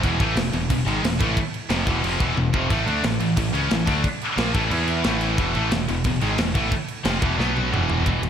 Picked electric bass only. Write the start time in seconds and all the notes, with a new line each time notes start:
0.03 E1
0.20 A1
0.36 E1
0.52 E1
0.70 E1
0.86 G#1
1.03 E1
1.20 A1
1.70 F1
1.87 E1
2.03 F1
2.20 E1
2.36 E1
2.54 F1
2.70 A1
2.86 D2
3.04 A1
3.21 A1
3.37 A1
3.53 C#2
3.70 A1
3.88 D2
4.37 A#1
4.54 A1
4.71 E2
5.05 A1
5.38 E1
5.56 A1
5.72 E1
5.89 E1
6.05 E1
6.22 G#1
6.39 E1
6.55 A1
7.05 F1
7.22 E1
7.38 B1
7.72 E1
8.06 E1
8.23 E1